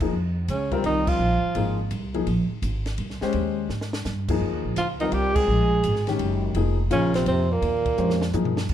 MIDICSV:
0, 0, Header, 1, 7, 480
1, 0, Start_track
1, 0, Tempo, 356930
1, 176, Time_signature, 3, 2, 24, 8
1, 11752, End_track
2, 0, Start_track
2, 0, Title_t, "Tenor saxophone"
2, 0, Program_c, 0, 66
2, 674, Note_on_c, 0, 61, 83
2, 988, Note_on_c, 0, 60, 72
2, 1008, Note_off_c, 0, 61, 0
2, 1145, Note_off_c, 0, 60, 0
2, 1154, Note_on_c, 0, 63, 92
2, 1458, Note_on_c, 0, 65, 97
2, 1478, Note_off_c, 0, 63, 0
2, 2412, Note_off_c, 0, 65, 0
2, 6423, Note_on_c, 0, 65, 81
2, 6561, Note_off_c, 0, 65, 0
2, 6734, Note_on_c, 0, 63, 77
2, 6901, Note_on_c, 0, 67, 93
2, 6921, Note_off_c, 0, 63, 0
2, 7197, Note_on_c, 0, 68, 99
2, 7217, Note_off_c, 0, 67, 0
2, 8160, Note_off_c, 0, 68, 0
2, 9308, Note_on_c, 0, 61, 97
2, 9592, Note_off_c, 0, 61, 0
2, 9613, Note_on_c, 0, 60, 87
2, 9764, Note_off_c, 0, 60, 0
2, 9786, Note_on_c, 0, 60, 94
2, 10114, Note_on_c, 0, 58, 89
2, 10135, Note_off_c, 0, 60, 0
2, 11227, Note_off_c, 0, 58, 0
2, 11752, End_track
3, 0, Start_track
3, 0, Title_t, "Grand piano"
3, 0, Program_c, 1, 0
3, 18, Note_on_c, 1, 58, 56
3, 19, Note_on_c, 1, 53, 66
3, 19, Note_on_c, 1, 63, 59
3, 21, Note_on_c, 1, 68, 67
3, 163, Note_off_c, 1, 58, 0
3, 164, Note_off_c, 1, 53, 0
3, 164, Note_off_c, 1, 63, 0
3, 165, Note_off_c, 1, 68, 0
3, 960, Note_on_c, 1, 55, 71
3, 969, Note_on_c, 1, 65, 65
3, 970, Note_on_c, 1, 60, 65
3, 974, Note_on_c, 1, 70, 83
3, 1577, Note_off_c, 1, 55, 0
3, 1581, Note_off_c, 1, 65, 0
3, 1582, Note_off_c, 1, 60, 0
3, 1584, Note_off_c, 1, 70, 0
3, 2092, Note_on_c, 1, 53, 62
3, 2097, Note_on_c, 1, 58, 62
3, 2098, Note_on_c, 1, 68, 70
3, 2100, Note_on_c, 1, 63, 58
3, 2375, Note_off_c, 1, 53, 0
3, 2377, Note_off_c, 1, 58, 0
3, 2378, Note_off_c, 1, 68, 0
3, 2379, Note_off_c, 1, 63, 0
3, 2881, Note_on_c, 1, 58, 56
3, 2882, Note_on_c, 1, 63, 60
3, 2883, Note_on_c, 1, 53, 70
3, 2890, Note_on_c, 1, 68, 72
3, 3033, Note_off_c, 1, 58, 0
3, 3034, Note_off_c, 1, 53, 0
3, 3034, Note_off_c, 1, 63, 0
3, 3038, Note_off_c, 1, 68, 0
3, 4333, Note_on_c, 1, 56, 83
3, 4334, Note_on_c, 1, 67, 73
3, 4335, Note_on_c, 1, 61, 71
3, 4343, Note_on_c, 1, 72, 84
3, 4941, Note_off_c, 1, 56, 0
3, 4942, Note_off_c, 1, 61, 0
3, 4942, Note_off_c, 1, 67, 0
3, 4946, Note_off_c, 1, 72, 0
3, 5778, Note_on_c, 1, 53, 72
3, 5779, Note_on_c, 1, 58, 65
3, 5782, Note_on_c, 1, 63, 66
3, 5784, Note_on_c, 1, 68, 76
3, 6383, Note_off_c, 1, 53, 0
3, 6384, Note_off_c, 1, 58, 0
3, 6385, Note_off_c, 1, 63, 0
3, 6387, Note_off_c, 1, 68, 0
3, 6736, Note_on_c, 1, 55, 63
3, 6736, Note_on_c, 1, 60, 63
3, 6742, Note_on_c, 1, 65, 68
3, 6745, Note_on_c, 1, 70, 75
3, 7342, Note_off_c, 1, 55, 0
3, 7342, Note_off_c, 1, 60, 0
3, 7345, Note_off_c, 1, 65, 0
3, 7347, Note_off_c, 1, 70, 0
3, 8178, Note_on_c, 1, 51, 78
3, 8180, Note_on_c, 1, 61, 73
3, 8180, Note_on_c, 1, 67, 80
3, 8182, Note_on_c, 1, 56, 62
3, 8784, Note_off_c, 1, 51, 0
3, 8785, Note_off_c, 1, 61, 0
3, 8785, Note_off_c, 1, 67, 0
3, 8786, Note_off_c, 1, 56, 0
3, 8824, Note_on_c, 1, 53, 67
3, 8825, Note_on_c, 1, 58, 59
3, 8825, Note_on_c, 1, 63, 62
3, 8831, Note_on_c, 1, 68, 72
3, 9100, Note_off_c, 1, 53, 0
3, 9100, Note_off_c, 1, 58, 0
3, 9100, Note_off_c, 1, 63, 0
3, 9103, Note_off_c, 1, 68, 0
3, 9284, Note_on_c, 1, 58, 60
3, 9285, Note_on_c, 1, 53, 67
3, 9288, Note_on_c, 1, 63, 65
3, 9292, Note_on_c, 1, 65, 82
3, 10019, Note_off_c, 1, 53, 0
3, 10019, Note_off_c, 1, 58, 0
3, 10021, Note_off_c, 1, 63, 0
3, 10023, Note_off_c, 1, 65, 0
3, 10725, Note_on_c, 1, 56, 63
3, 10730, Note_on_c, 1, 67, 56
3, 10733, Note_on_c, 1, 61, 62
3, 10735, Note_on_c, 1, 72, 65
3, 11011, Note_off_c, 1, 56, 0
3, 11014, Note_off_c, 1, 67, 0
3, 11015, Note_off_c, 1, 61, 0
3, 11016, Note_off_c, 1, 72, 0
3, 11216, Note_on_c, 1, 53, 67
3, 11220, Note_on_c, 1, 58, 62
3, 11221, Note_on_c, 1, 63, 58
3, 11222, Note_on_c, 1, 68, 73
3, 11497, Note_off_c, 1, 53, 0
3, 11499, Note_off_c, 1, 58, 0
3, 11500, Note_off_c, 1, 63, 0
3, 11500, Note_off_c, 1, 68, 0
3, 11752, End_track
4, 0, Start_track
4, 0, Title_t, "Trombone"
4, 0, Program_c, 2, 57
4, 663, Note_on_c, 2, 49, 64
4, 973, Note_on_c, 2, 48, 65
4, 993, Note_off_c, 2, 49, 0
4, 1126, Note_off_c, 2, 48, 0
4, 1134, Note_on_c, 2, 51, 74
4, 1455, Note_on_c, 2, 53, 83
4, 1475, Note_off_c, 2, 51, 0
4, 2411, Note_off_c, 2, 53, 0
4, 6411, Note_on_c, 2, 53, 65
4, 6552, Note_off_c, 2, 53, 0
4, 6709, Note_on_c, 2, 51, 70
4, 6875, Note_on_c, 2, 55, 80
4, 6895, Note_off_c, 2, 51, 0
4, 7182, Note_on_c, 2, 56, 87
4, 7202, Note_off_c, 2, 55, 0
4, 8153, Note_off_c, 2, 56, 0
4, 9299, Note_on_c, 2, 49, 82
4, 9587, Note_off_c, 2, 49, 0
4, 9624, Note_on_c, 2, 48, 77
4, 9770, Note_off_c, 2, 48, 0
4, 9798, Note_on_c, 2, 48, 81
4, 10104, Note_on_c, 2, 46, 78
4, 10124, Note_off_c, 2, 48, 0
4, 11222, Note_off_c, 2, 46, 0
4, 11752, End_track
5, 0, Start_track
5, 0, Title_t, "Upright bass"
5, 0, Program_c, 3, 32
5, 176, Note_on_c, 3, 41, 74
5, 641, Note_off_c, 3, 41, 0
5, 651, Note_on_c, 3, 37, 83
5, 1119, Note_off_c, 3, 37, 0
5, 1126, Note_on_c, 3, 36, 73
5, 1592, Note_off_c, 3, 36, 0
5, 1600, Note_on_c, 3, 34, 74
5, 1898, Note_off_c, 3, 34, 0
5, 2087, Note_on_c, 3, 32, 86
5, 2555, Note_off_c, 3, 32, 0
5, 2572, Note_on_c, 3, 36, 74
5, 3038, Note_off_c, 3, 36, 0
5, 3050, Note_on_c, 3, 34, 76
5, 3343, Note_off_c, 3, 34, 0
5, 3526, Note_on_c, 3, 32, 80
5, 3994, Note_off_c, 3, 32, 0
5, 4010, Note_on_c, 3, 36, 80
5, 4302, Note_off_c, 3, 36, 0
5, 4491, Note_on_c, 3, 39, 75
5, 4956, Note_off_c, 3, 39, 0
5, 4967, Note_on_c, 3, 44, 74
5, 5434, Note_off_c, 3, 44, 0
5, 5449, Note_on_c, 3, 43, 79
5, 5915, Note_off_c, 3, 43, 0
5, 5925, Note_on_c, 3, 41, 75
5, 6082, Note_off_c, 3, 41, 0
5, 6082, Note_on_c, 3, 39, 55
5, 6239, Note_off_c, 3, 39, 0
5, 6247, Note_on_c, 3, 34, 61
5, 6397, Note_off_c, 3, 34, 0
5, 6406, Note_on_c, 3, 37, 83
5, 6873, Note_off_c, 3, 37, 0
5, 6886, Note_on_c, 3, 36, 70
5, 7353, Note_off_c, 3, 36, 0
5, 7366, Note_on_c, 3, 34, 77
5, 7833, Note_off_c, 3, 34, 0
5, 7849, Note_on_c, 3, 32, 78
5, 8315, Note_off_c, 3, 32, 0
5, 8326, Note_on_c, 3, 30, 79
5, 8794, Note_off_c, 3, 30, 0
5, 8802, Note_on_c, 3, 29, 81
5, 9272, Note_off_c, 3, 29, 0
5, 9283, Note_on_c, 3, 34, 80
5, 9753, Note_off_c, 3, 34, 0
5, 9766, Note_on_c, 3, 41, 77
5, 10234, Note_off_c, 3, 41, 0
5, 10245, Note_on_c, 3, 39, 82
5, 10714, Note_off_c, 3, 39, 0
5, 10735, Note_on_c, 3, 41, 84
5, 11200, Note_off_c, 3, 41, 0
5, 11209, Note_on_c, 3, 43, 78
5, 11677, Note_off_c, 3, 43, 0
5, 11687, Note_on_c, 3, 41, 71
5, 11752, Note_off_c, 3, 41, 0
5, 11752, End_track
6, 0, Start_track
6, 0, Title_t, "Muted upright bass strokes"
6, 1924, Note_on_c, 9, 29, 36
6, 2059, Note_off_c, 9, 29, 0
6, 3367, Note_on_c, 9, 29, 37
6, 3501, Note_off_c, 9, 29, 0
6, 4326, Note_on_c, 9, 29, 36
6, 4461, Note_off_c, 9, 29, 0
6, 11752, End_track
7, 0, Start_track
7, 0, Title_t, "Drums"
7, 6, Note_on_c, 9, 36, 68
7, 7, Note_on_c, 9, 49, 60
7, 141, Note_off_c, 9, 36, 0
7, 141, Note_off_c, 9, 49, 0
7, 650, Note_on_c, 9, 44, 49
7, 650, Note_on_c, 9, 51, 62
7, 785, Note_off_c, 9, 44, 0
7, 785, Note_off_c, 9, 51, 0
7, 961, Note_on_c, 9, 51, 44
7, 964, Note_on_c, 9, 36, 45
7, 1096, Note_off_c, 9, 51, 0
7, 1098, Note_off_c, 9, 36, 0
7, 1127, Note_on_c, 9, 51, 56
7, 1261, Note_off_c, 9, 51, 0
7, 1442, Note_on_c, 9, 36, 79
7, 1442, Note_on_c, 9, 49, 69
7, 1576, Note_off_c, 9, 49, 0
7, 1577, Note_off_c, 9, 36, 0
7, 2082, Note_on_c, 9, 51, 62
7, 2216, Note_off_c, 9, 51, 0
7, 2563, Note_on_c, 9, 44, 49
7, 2563, Note_on_c, 9, 51, 61
7, 2698, Note_off_c, 9, 44, 0
7, 2698, Note_off_c, 9, 51, 0
7, 2882, Note_on_c, 9, 51, 41
7, 3016, Note_off_c, 9, 51, 0
7, 3048, Note_on_c, 9, 51, 56
7, 3182, Note_off_c, 9, 51, 0
7, 3530, Note_on_c, 9, 44, 54
7, 3530, Note_on_c, 9, 51, 62
7, 3664, Note_off_c, 9, 44, 0
7, 3664, Note_off_c, 9, 51, 0
7, 3841, Note_on_c, 9, 51, 45
7, 3845, Note_on_c, 9, 38, 53
7, 3976, Note_off_c, 9, 51, 0
7, 3980, Note_off_c, 9, 38, 0
7, 4003, Note_on_c, 9, 51, 62
7, 4138, Note_off_c, 9, 51, 0
7, 4171, Note_on_c, 9, 38, 30
7, 4306, Note_off_c, 9, 38, 0
7, 4321, Note_on_c, 9, 38, 45
7, 4455, Note_off_c, 9, 38, 0
7, 4473, Note_on_c, 9, 51, 59
7, 4608, Note_off_c, 9, 51, 0
7, 4968, Note_on_c, 9, 38, 45
7, 5102, Note_off_c, 9, 38, 0
7, 5129, Note_on_c, 9, 38, 60
7, 5264, Note_off_c, 9, 38, 0
7, 5288, Note_on_c, 9, 38, 89
7, 5423, Note_off_c, 9, 38, 0
7, 5446, Note_on_c, 9, 44, 48
7, 5450, Note_on_c, 9, 38, 55
7, 5580, Note_off_c, 9, 44, 0
7, 5584, Note_off_c, 9, 38, 0
7, 5762, Note_on_c, 9, 49, 70
7, 5763, Note_on_c, 9, 36, 72
7, 5896, Note_off_c, 9, 49, 0
7, 5897, Note_off_c, 9, 36, 0
7, 6404, Note_on_c, 9, 44, 55
7, 6404, Note_on_c, 9, 51, 67
7, 6538, Note_off_c, 9, 44, 0
7, 6538, Note_off_c, 9, 51, 0
7, 6723, Note_on_c, 9, 51, 48
7, 6857, Note_off_c, 9, 51, 0
7, 6882, Note_on_c, 9, 51, 57
7, 7017, Note_off_c, 9, 51, 0
7, 7204, Note_on_c, 9, 36, 83
7, 7204, Note_on_c, 9, 49, 72
7, 7338, Note_off_c, 9, 49, 0
7, 7339, Note_off_c, 9, 36, 0
7, 7847, Note_on_c, 9, 44, 51
7, 7847, Note_on_c, 9, 51, 67
7, 7981, Note_off_c, 9, 44, 0
7, 7981, Note_off_c, 9, 51, 0
7, 8008, Note_on_c, 9, 38, 28
7, 8142, Note_off_c, 9, 38, 0
7, 8161, Note_on_c, 9, 51, 49
7, 8169, Note_on_c, 9, 38, 46
7, 8296, Note_off_c, 9, 51, 0
7, 8303, Note_off_c, 9, 38, 0
7, 8327, Note_on_c, 9, 51, 60
7, 8461, Note_off_c, 9, 51, 0
7, 8803, Note_on_c, 9, 51, 61
7, 8937, Note_off_c, 9, 51, 0
7, 9289, Note_on_c, 9, 44, 57
7, 9289, Note_on_c, 9, 51, 67
7, 9423, Note_off_c, 9, 44, 0
7, 9423, Note_off_c, 9, 51, 0
7, 9602, Note_on_c, 9, 51, 50
7, 9606, Note_on_c, 9, 38, 61
7, 9736, Note_off_c, 9, 51, 0
7, 9741, Note_off_c, 9, 38, 0
7, 9765, Note_on_c, 9, 51, 64
7, 9899, Note_off_c, 9, 51, 0
7, 10252, Note_on_c, 9, 51, 57
7, 10387, Note_off_c, 9, 51, 0
7, 10564, Note_on_c, 9, 51, 49
7, 10566, Note_on_c, 9, 36, 63
7, 10699, Note_off_c, 9, 51, 0
7, 10701, Note_off_c, 9, 36, 0
7, 10726, Note_on_c, 9, 44, 47
7, 10860, Note_off_c, 9, 44, 0
7, 10892, Note_on_c, 9, 38, 53
7, 11027, Note_off_c, 9, 38, 0
7, 11048, Note_on_c, 9, 38, 75
7, 11183, Note_off_c, 9, 38, 0
7, 11207, Note_on_c, 9, 44, 65
7, 11211, Note_on_c, 9, 47, 64
7, 11342, Note_off_c, 9, 44, 0
7, 11346, Note_off_c, 9, 47, 0
7, 11368, Note_on_c, 9, 43, 68
7, 11503, Note_off_c, 9, 43, 0
7, 11528, Note_on_c, 9, 38, 90
7, 11662, Note_off_c, 9, 38, 0
7, 11687, Note_on_c, 9, 49, 66
7, 11690, Note_on_c, 9, 36, 67
7, 11752, Note_off_c, 9, 36, 0
7, 11752, Note_off_c, 9, 49, 0
7, 11752, End_track
0, 0, End_of_file